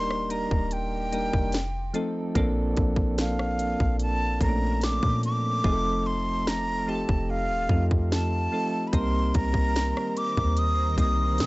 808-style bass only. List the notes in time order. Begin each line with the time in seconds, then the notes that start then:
Already playing: D#1
0.51 D#1
1.34 F1
2.35 A#1
2.77 A#1
3.80 A#1
4.41 A#1
5.03 A#2
5.65 F1
7.09 F1
7.49 D#1
7.69 F2
8.93 C2
9.35 C2
10.37 D#2
10.98 C2
11.40 C3